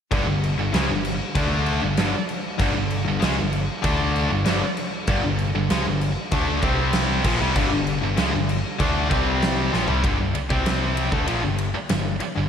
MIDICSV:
0, 0, Header, 1, 7, 480
1, 0, Start_track
1, 0, Tempo, 619835
1, 98, Time_signature, 4, 2, 24, 8
1, 9671, End_track
2, 0, Start_track
2, 0, Title_t, "Distorted electric guitar"
2, 0, Program_c, 0, 30
2, 2508, Note_on_c, 0, 49, 91
2, 2511, Note_on_c, 0, 56, 104
2, 2617, Note_off_c, 0, 49, 0
2, 2618, Note_off_c, 0, 56, 0
2, 9671, End_track
3, 0, Start_track
3, 0, Title_t, "Distorted electric guitar"
3, 0, Program_c, 1, 30
3, 86, Note_on_c, 1, 43, 87
3, 90, Note_on_c, 1, 50, 99
3, 196, Note_off_c, 1, 43, 0
3, 198, Note_off_c, 1, 50, 0
3, 206, Note_on_c, 1, 43, 62
3, 207, Note_on_c, 1, 50, 71
3, 404, Note_off_c, 1, 43, 0
3, 405, Note_off_c, 1, 50, 0
3, 449, Note_on_c, 1, 43, 66
3, 453, Note_on_c, 1, 50, 64
3, 559, Note_off_c, 1, 50, 0
3, 563, Note_on_c, 1, 49, 90
3, 570, Note_on_c, 1, 56, 106
3, 574, Note_off_c, 1, 43, 0
3, 684, Note_off_c, 1, 49, 0
3, 687, Note_off_c, 1, 56, 0
3, 688, Note_on_c, 1, 43, 62
3, 689, Note_on_c, 1, 50, 70
3, 886, Note_off_c, 1, 43, 0
3, 886, Note_off_c, 1, 50, 0
3, 1046, Note_on_c, 1, 50, 96
3, 1050, Note_on_c, 1, 57, 99
3, 1053, Note_on_c, 1, 62, 105
3, 1406, Note_off_c, 1, 50, 0
3, 1408, Note_off_c, 1, 57, 0
3, 1410, Note_off_c, 1, 62, 0
3, 1411, Note_on_c, 1, 43, 68
3, 1415, Note_on_c, 1, 50, 71
3, 1520, Note_off_c, 1, 43, 0
3, 1522, Note_off_c, 1, 50, 0
3, 1529, Note_on_c, 1, 43, 87
3, 1532, Note_on_c, 1, 50, 97
3, 1648, Note_off_c, 1, 43, 0
3, 1649, Note_off_c, 1, 50, 0
3, 2001, Note_on_c, 1, 43, 94
3, 2006, Note_on_c, 1, 50, 95
3, 2108, Note_off_c, 1, 43, 0
3, 2113, Note_off_c, 1, 50, 0
3, 2117, Note_on_c, 1, 43, 61
3, 2122, Note_on_c, 1, 50, 67
3, 2321, Note_off_c, 1, 43, 0
3, 2324, Note_off_c, 1, 50, 0
3, 2362, Note_on_c, 1, 50, 67
3, 2363, Note_on_c, 1, 43, 65
3, 2472, Note_off_c, 1, 50, 0
3, 2475, Note_on_c, 1, 49, 90
3, 2478, Note_on_c, 1, 56, 93
3, 2492, Note_off_c, 1, 43, 0
3, 2600, Note_off_c, 1, 49, 0
3, 2602, Note_off_c, 1, 56, 0
3, 2609, Note_on_c, 1, 43, 69
3, 2611, Note_on_c, 1, 50, 66
3, 2807, Note_off_c, 1, 43, 0
3, 2807, Note_off_c, 1, 50, 0
3, 2960, Note_on_c, 1, 50, 103
3, 2963, Note_on_c, 1, 57, 114
3, 2966, Note_on_c, 1, 62, 104
3, 3314, Note_off_c, 1, 50, 0
3, 3322, Note_on_c, 1, 43, 70
3, 3323, Note_on_c, 1, 50, 69
3, 3324, Note_off_c, 1, 57, 0
3, 3326, Note_off_c, 1, 62, 0
3, 3435, Note_off_c, 1, 43, 0
3, 3444, Note_on_c, 1, 43, 80
3, 3445, Note_off_c, 1, 50, 0
3, 3454, Note_on_c, 1, 50, 96
3, 3564, Note_off_c, 1, 43, 0
3, 3570, Note_off_c, 1, 50, 0
3, 3935, Note_on_c, 1, 43, 98
3, 3939, Note_on_c, 1, 50, 100
3, 4043, Note_off_c, 1, 43, 0
3, 4045, Note_off_c, 1, 50, 0
3, 4052, Note_on_c, 1, 43, 65
3, 4055, Note_on_c, 1, 50, 65
3, 4247, Note_off_c, 1, 43, 0
3, 4248, Note_off_c, 1, 50, 0
3, 4301, Note_on_c, 1, 43, 64
3, 4301, Note_on_c, 1, 50, 71
3, 4417, Note_off_c, 1, 50, 0
3, 4419, Note_off_c, 1, 43, 0
3, 4420, Note_on_c, 1, 49, 87
3, 4424, Note_on_c, 1, 56, 98
3, 4531, Note_off_c, 1, 49, 0
3, 4533, Note_off_c, 1, 56, 0
3, 4533, Note_on_c, 1, 43, 64
3, 4537, Note_on_c, 1, 50, 74
3, 4727, Note_off_c, 1, 43, 0
3, 4729, Note_off_c, 1, 50, 0
3, 4893, Note_on_c, 1, 50, 106
3, 4894, Note_on_c, 1, 57, 112
3, 4899, Note_on_c, 1, 62, 113
3, 5127, Note_off_c, 1, 50, 0
3, 5128, Note_off_c, 1, 57, 0
3, 5130, Note_off_c, 1, 62, 0
3, 5132, Note_on_c, 1, 48, 83
3, 5137, Note_on_c, 1, 55, 101
3, 5139, Note_on_c, 1, 60, 107
3, 5606, Note_off_c, 1, 48, 0
3, 5608, Note_off_c, 1, 55, 0
3, 5609, Note_on_c, 1, 46, 88
3, 5610, Note_off_c, 1, 60, 0
3, 5614, Note_on_c, 1, 53, 104
3, 5725, Note_off_c, 1, 46, 0
3, 5727, Note_off_c, 1, 53, 0
3, 5730, Note_on_c, 1, 48, 86
3, 5732, Note_on_c, 1, 55, 105
3, 5845, Note_off_c, 1, 48, 0
3, 5845, Note_on_c, 1, 43, 95
3, 5846, Note_off_c, 1, 55, 0
3, 5850, Note_on_c, 1, 50, 99
3, 5958, Note_off_c, 1, 43, 0
3, 5960, Note_off_c, 1, 50, 0
3, 5968, Note_on_c, 1, 43, 59
3, 5969, Note_on_c, 1, 50, 76
3, 6163, Note_off_c, 1, 43, 0
3, 6164, Note_off_c, 1, 50, 0
3, 6204, Note_on_c, 1, 43, 69
3, 6205, Note_on_c, 1, 50, 76
3, 6321, Note_off_c, 1, 50, 0
3, 6324, Note_on_c, 1, 49, 88
3, 6329, Note_off_c, 1, 43, 0
3, 6330, Note_on_c, 1, 56, 106
3, 6440, Note_on_c, 1, 43, 56
3, 6442, Note_off_c, 1, 49, 0
3, 6444, Note_off_c, 1, 56, 0
3, 6445, Note_on_c, 1, 50, 66
3, 6639, Note_off_c, 1, 43, 0
3, 6641, Note_off_c, 1, 50, 0
3, 6805, Note_on_c, 1, 50, 94
3, 6805, Note_on_c, 1, 57, 102
3, 6812, Note_on_c, 1, 62, 108
3, 7033, Note_off_c, 1, 50, 0
3, 7037, Note_on_c, 1, 48, 92
3, 7039, Note_off_c, 1, 62, 0
3, 7040, Note_off_c, 1, 57, 0
3, 7043, Note_on_c, 1, 55, 95
3, 7043, Note_on_c, 1, 60, 93
3, 7517, Note_off_c, 1, 48, 0
3, 7520, Note_off_c, 1, 55, 0
3, 7520, Note_off_c, 1, 60, 0
3, 7523, Note_on_c, 1, 46, 99
3, 7530, Note_on_c, 1, 53, 100
3, 7640, Note_off_c, 1, 46, 0
3, 7643, Note_on_c, 1, 48, 84
3, 7644, Note_off_c, 1, 53, 0
3, 7648, Note_on_c, 1, 55, 91
3, 7761, Note_off_c, 1, 48, 0
3, 7763, Note_off_c, 1, 55, 0
3, 7769, Note_on_c, 1, 43, 92
3, 7773, Note_on_c, 1, 50, 92
3, 7883, Note_off_c, 1, 43, 0
3, 7886, Note_off_c, 1, 50, 0
3, 7895, Note_on_c, 1, 43, 62
3, 7895, Note_on_c, 1, 50, 64
3, 8002, Note_off_c, 1, 43, 0
3, 8014, Note_off_c, 1, 50, 0
3, 8128, Note_on_c, 1, 48, 82
3, 8135, Note_on_c, 1, 55, 81
3, 8136, Note_on_c, 1, 60, 100
3, 8603, Note_off_c, 1, 48, 0
3, 8607, Note_off_c, 1, 55, 0
3, 8608, Note_off_c, 1, 60, 0
3, 8611, Note_on_c, 1, 50, 86
3, 8616, Note_on_c, 1, 57, 92
3, 8723, Note_off_c, 1, 50, 0
3, 8726, Note_on_c, 1, 46, 96
3, 8727, Note_off_c, 1, 57, 0
3, 8730, Note_on_c, 1, 53, 106
3, 8842, Note_off_c, 1, 46, 0
3, 8845, Note_off_c, 1, 53, 0
3, 8848, Note_on_c, 1, 43, 64
3, 8850, Note_on_c, 1, 50, 69
3, 9043, Note_off_c, 1, 43, 0
3, 9044, Note_off_c, 1, 50, 0
3, 9211, Note_on_c, 1, 43, 55
3, 9215, Note_on_c, 1, 50, 60
3, 9405, Note_off_c, 1, 43, 0
3, 9406, Note_off_c, 1, 50, 0
3, 9570, Note_on_c, 1, 43, 60
3, 9573, Note_on_c, 1, 50, 68
3, 9671, Note_off_c, 1, 43, 0
3, 9671, Note_off_c, 1, 50, 0
3, 9671, End_track
4, 0, Start_track
4, 0, Title_t, "Picked electric bass"
4, 0, Program_c, 2, 34
4, 90, Note_on_c, 2, 31, 92
4, 206, Note_off_c, 2, 31, 0
4, 210, Note_on_c, 2, 31, 84
4, 438, Note_off_c, 2, 31, 0
4, 452, Note_on_c, 2, 31, 80
4, 567, Note_off_c, 2, 31, 0
4, 577, Note_on_c, 2, 37, 100
4, 690, Note_off_c, 2, 37, 0
4, 695, Note_on_c, 2, 31, 82
4, 920, Note_off_c, 2, 31, 0
4, 1049, Note_on_c, 2, 38, 90
4, 1389, Note_off_c, 2, 38, 0
4, 1417, Note_on_c, 2, 31, 80
4, 1530, Note_off_c, 2, 31, 0
4, 1537, Note_on_c, 2, 31, 103
4, 1650, Note_off_c, 2, 31, 0
4, 2011, Note_on_c, 2, 31, 92
4, 2127, Note_off_c, 2, 31, 0
4, 2143, Note_on_c, 2, 31, 86
4, 2365, Note_off_c, 2, 31, 0
4, 2384, Note_on_c, 2, 31, 81
4, 2494, Note_off_c, 2, 31, 0
4, 2500, Note_on_c, 2, 37, 101
4, 2612, Note_off_c, 2, 37, 0
4, 2625, Note_on_c, 2, 31, 81
4, 2846, Note_off_c, 2, 31, 0
4, 2974, Note_on_c, 2, 38, 96
4, 3311, Note_off_c, 2, 38, 0
4, 3345, Note_on_c, 2, 31, 83
4, 3454, Note_off_c, 2, 31, 0
4, 3462, Note_on_c, 2, 31, 93
4, 3572, Note_off_c, 2, 31, 0
4, 3933, Note_on_c, 2, 31, 86
4, 4047, Note_off_c, 2, 31, 0
4, 4061, Note_on_c, 2, 31, 81
4, 4283, Note_off_c, 2, 31, 0
4, 4301, Note_on_c, 2, 31, 85
4, 4411, Note_off_c, 2, 31, 0
4, 4417, Note_on_c, 2, 37, 97
4, 4529, Note_off_c, 2, 37, 0
4, 4541, Note_on_c, 2, 31, 84
4, 4762, Note_off_c, 2, 31, 0
4, 4895, Note_on_c, 2, 38, 93
4, 5118, Note_off_c, 2, 38, 0
4, 5135, Note_on_c, 2, 36, 97
4, 5583, Note_off_c, 2, 36, 0
4, 5614, Note_on_c, 2, 34, 90
4, 5726, Note_off_c, 2, 34, 0
4, 5745, Note_on_c, 2, 36, 97
4, 5848, Note_off_c, 2, 36, 0
4, 5853, Note_on_c, 2, 31, 88
4, 5965, Note_off_c, 2, 31, 0
4, 5978, Note_on_c, 2, 31, 88
4, 6199, Note_off_c, 2, 31, 0
4, 6216, Note_on_c, 2, 31, 83
4, 6326, Note_off_c, 2, 31, 0
4, 6340, Note_on_c, 2, 37, 90
4, 6449, Note_off_c, 2, 37, 0
4, 6459, Note_on_c, 2, 31, 80
4, 6679, Note_off_c, 2, 31, 0
4, 6815, Note_on_c, 2, 38, 97
4, 7037, Note_off_c, 2, 38, 0
4, 7054, Note_on_c, 2, 36, 87
4, 7502, Note_off_c, 2, 36, 0
4, 7539, Note_on_c, 2, 34, 93
4, 7648, Note_off_c, 2, 34, 0
4, 7658, Note_on_c, 2, 36, 93
4, 7767, Note_off_c, 2, 36, 0
4, 7771, Note_on_c, 2, 31, 80
4, 7883, Note_off_c, 2, 31, 0
4, 7904, Note_on_c, 2, 31, 74
4, 8011, Note_off_c, 2, 31, 0
4, 8132, Note_on_c, 2, 36, 96
4, 8582, Note_off_c, 2, 36, 0
4, 8613, Note_on_c, 2, 38, 83
4, 8725, Note_off_c, 2, 38, 0
4, 8741, Note_on_c, 2, 34, 81
4, 8849, Note_off_c, 2, 34, 0
4, 8864, Note_on_c, 2, 31, 72
4, 9082, Note_off_c, 2, 31, 0
4, 9223, Note_on_c, 2, 31, 73
4, 9442, Note_off_c, 2, 31, 0
4, 9581, Note_on_c, 2, 31, 80
4, 9671, Note_off_c, 2, 31, 0
4, 9671, End_track
5, 0, Start_track
5, 0, Title_t, "Muted distorted electric guitar strokes"
5, 8011, Note_on_c, 9, 29, 58
5, 8089, Note_off_c, 9, 29, 0
5, 9096, Note_on_c, 9, 29, 59
5, 9174, Note_off_c, 9, 29, 0
5, 9449, Note_on_c, 9, 29, 57
5, 9526, Note_off_c, 9, 29, 0
5, 9671, End_track
6, 0, Start_track
6, 0, Title_t, "Muted picked electric bass strokes"
6, 8026, Note_on_c, 9, 29, 39
6, 8103, Note_off_c, 9, 29, 0
6, 9104, Note_on_c, 9, 29, 42
6, 9182, Note_off_c, 9, 29, 0
6, 9460, Note_on_c, 9, 29, 38
6, 9538, Note_off_c, 9, 29, 0
6, 9671, End_track
7, 0, Start_track
7, 0, Title_t, "Drums"
7, 90, Note_on_c, 9, 36, 102
7, 92, Note_on_c, 9, 49, 81
7, 167, Note_off_c, 9, 36, 0
7, 170, Note_off_c, 9, 49, 0
7, 337, Note_on_c, 9, 49, 62
7, 414, Note_off_c, 9, 49, 0
7, 571, Note_on_c, 9, 49, 86
7, 577, Note_on_c, 9, 38, 114
7, 649, Note_off_c, 9, 49, 0
7, 654, Note_off_c, 9, 38, 0
7, 810, Note_on_c, 9, 49, 68
7, 887, Note_off_c, 9, 49, 0
7, 1048, Note_on_c, 9, 36, 100
7, 1048, Note_on_c, 9, 49, 84
7, 1126, Note_off_c, 9, 36, 0
7, 1126, Note_off_c, 9, 49, 0
7, 1287, Note_on_c, 9, 49, 61
7, 1365, Note_off_c, 9, 49, 0
7, 1528, Note_on_c, 9, 49, 84
7, 1533, Note_on_c, 9, 38, 111
7, 1605, Note_off_c, 9, 49, 0
7, 1611, Note_off_c, 9, 38, 0
7, 1772, Note_on_c, 9, 49, 65
7, 1849, Note_off_c, 9, 49, 0
7, 2008, Note_on_c, 9, 49, 83
7, 2010, Note_on_c, 9, 36, 108
7, 2086, Note_off_c, 9, 49, 0
7, 2088, Note_off_c, 9, 36, 0
7, 2250, Note_on_c, 9, 49, 60
7, 2327, Note_off_c, 9, 49, 0
7, 2492, Note_on_c, 9, 49, 86
7, 2498, Note_on_c, 9, 38, 110
7, 2570, Note_off_c, 9, 49, 0
7, 2575, Note_off_c, 9, 38, 0
7, 2731, Note_on_c, 9, 49, 62
7, 2808, Note_off_c, 9, 49, 0
7, 2973, Note_on_c, 9, 49, 75
7, 2975, Note_on_c, 9, 36, 109
7, 3050, Note_off_c, 9, 49, 0
7, 3052, Note_off_c, 9, 36, 0
7, 3219, Note_on_c, 9, 49, 57
7, 3296, Note_off_c, 9, 49, 0
7, 3451, Note_on_c, 9, 49, 78
7, 3456, Note_on_c, 9, 38, 109
7, 3528, Note_off_c, 9, 49, 0
7, 3534, Note_off_c, 9, 38, 0
7, 3693, Note_on_c, 9, 49, 58
7, 3771, Note_off_c, 9, 49, 0
7, 3929, Note_on_c, 9, 49, 85
7, 3933, Note_on_c, 9, 36, 112
7, 4007, Note_off_c, 9, 49, 0
7, 4010, Note_off_c, 9, 36, 0
7, 4171, Note_on_c, 9, 49, 58
7, 4249, Note_off_c, 9, 49, 0
7, 4415, Note_on_c, 9, 49, 81
7, 4420, Note_on_c, 9, 38, 110
7, 4492, Note_off_c, 9, 49, 0
7, 4497, Note_off_c, 9, 38, 0
7, 4656, Note_on_c, 9, 49, 61
7, 4734, Note_off_c, 9, 49, 0
7, 4890, Note_on_c, 9, 49, 78
7, 4894, Note_on_c, 9, 36, 100
7, 4967, Note_off_c, 9, 49, 0
7, 4972, Note_off_c, 9, 36, 0
7, 5128, Note_on_c, 9, 49, 64
7, 5133, Note_on_c, 9, 36, 103
7, 5206, Note_off_c, 9, 49, 0
7, 5210, Note_off_c, 9, 36, 0
7, 5365, Note_on_c, 9, 49, 81
7, 5370, Note_on_c, 9, 38, 109
7, 5442, Note_off_c, 9, 49, 0
7, 5448, Note_off_c, 9, 38, 0
7, 5608, Note_on_c, 9, 49, 101
7, 5612, Note_on_c, 9, 36, 113
7, 5685, Note_off_c, 9, 49, 0
7, 5689, Note_off_c, 9, 36, 0
7, 5850, Note_on_c, 9, 49, 86
7, 5854, Note_on_c, 9, 36, 109
7, 5928, Note_off_c, 9, 49, 0
7, 5932, Note_off_c, 9, 36, 0
7, 6093, Note_on_c, 9, 49, 64
7, 6171, Note_off_c, 9, 49, 0
7, 6329, Note_on_c, 9, 49, 82
7, 6335, Note_on_c, 9, 38, 112
7, 6407, Note_off_c, 9, 49, 0
7, 6412, Note_off_c, 9, 38, 0
7, 6575, Note_on_c, 9, 49, 66
7, 6653, Note_off_c, 9, 49, 0
7, 6812, Note_on_c, 9, 49, 75
7, 6814, Note_on_c, 9, 36, 106
7, 6890, Note_off_c, 9, 49, 0
7, 6892, Note_off_c, 9, 36, 0
7, 7054, Note_on_c, 9, 36, 108
7, 7055, Note_on_c, 9, 49, 58
7, 7132, Note_off_c, 9, 36, 0
7, 7133, Note_off_c, 9, 49, 0
7, 7296, Note_on_c, 9, 49, 77
7, 7302, Note_on_c, 9, 38, 114
7, 7374, Note_off_c, 9, 49, 0
7, 7379, Note_off_c, 9, 38, 0
7, 7540, Note_on_c, 9, 38, 63
7, 7618, Note_off_c, 9, 38, 0
7, 7649, Note_on_c, 9, 43, 85
7, 7727, Note_off_c, 9, 43, 0
7, 7773, Note_on_c, 9, 36, 106
7, 7777, Note_on_c, 9, 51, 88
7, 7851, Note_off_c, 9, 36, 0
7, 7855, Note_off_c, 9, 51, 0
7, 8014, Note_on_c, 9, 51, 67
7, 8091, Note_off_c, 9, 51, 0
7, 8134, Note_on_c, 9, 36, 109
7, 8211, Note_off_c, 9, 36, 0
7, 8255, Note_on_c, 9, 51, 93
7, 8260, Note_on_c, 9, 38, 114
7, 8332, Note_off_c, 9, 51, 0
7, 8337, Note_off_c, 9, 38, 0
7, 8495, Note_on_c, 9, 51, 68
7, 8572, Note_off_c, 9, 51, 0
7, 8612, Note_on_c, 9, 36, 102
7, 8689, Note_off_c, 9, 36, 0
7, 8731, Note_on_c, 9, 51, 90
7, 8809, Note_off_c, 9, 51, 0
7, 8971, Note_on_c, 9, 51, 68
7, 9048, Note_off_c, 9, 51, 0
7, 9210, Note_on_c, 9, 51, 88
7, 9215, Note_on_c, 9, 38, 103
7, 9287, Note_off_c, 9, 51, 0
7, 9293, Note_off_c, 9, 38, 0
7, 9448, Note_on_c, 9, 51, 71
7, 9526, Note_off_c, 9, 51, 0
7, 9671, End_track
0, 0, End_of_file